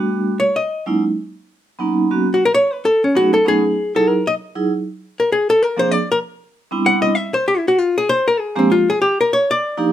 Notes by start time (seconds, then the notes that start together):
Already playing: G3 A3 B3 D4 F#4
0.40 C#5
0.56 D#5
0.86 F#3 G#3 A#3 C#4 D#4 E4
1.79 F#3 A#3 B3 C#4 D#4
2.11 F#3 A#3 B3 C#4 F#4
2.34 F#4
2.45 A#4
2.54 C#5
2.73 B4
2.85 A4
3.04 C#4
3.15 F#3 A3 B3 C#4 D#4 F#4 G#4
3.34 A4
3.45 F#3 A3 B3 C#4 D#4 G#4
3.95 F#3 D#4 E4 G#4 A4
4.08 A#4
4.27 D#5
4.55 F#3 D#4 E4 G#4
5.20 A#4
5.32 G#4
5.50 A4
5.63 A#4
5.77 F3 A#3 C4 D4 G#4 C5
5.91 D5
6.12 A#4
6.71 G3 B3 C4 D4 E4
6.86 F#5
7.02 D#5
7.15 E5
7.34 C5
7.48 G4
7.58 E4
7.68 F#4
7.78 F4
7.98 G#4
8.09 C5
8.28 A#4
8.40 G#4
8.55 F3 G#3 A#3 C4 D4 G4
8.72 F4
8.90 G#4
9.02 G4
9.21 A#4
9.33 C#5
9.51 D5
9.77 F3 A#3 D4 D#4 G4